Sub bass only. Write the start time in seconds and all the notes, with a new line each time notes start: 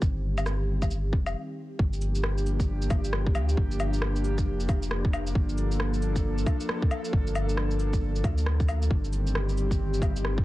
0.02 G1
1.13 F1
1.79 G1
2.91 G1
3.35 D2
3.57 G1
4.47 F1
4.69 F1
5.35 G1
7.13 G1
8.24 D2
8.91 G1
10.02 G1